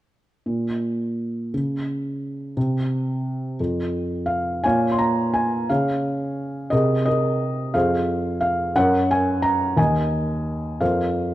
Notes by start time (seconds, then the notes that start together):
0.46 A#2
1.54 C#3
2.57 C3
3.60 F2
4.26 F5
4.64 A#2 C#5 F5 G#5
4.92 C6
4.99 A#5
5.34 G#5
5.69 C#3 G#4 C#5 F5
6.70 C3 G#4 A#4 D#5
7.06 G#4 A#4 D#5
7.74 F2 G#4 C5 F5
8.41 F5
8.76 F#2 A#4 C#5 F#5
9.11 G#5
9.42 A#5
9.77 D#2 D#5 G#5
10.81 F2 A#4 C5 F5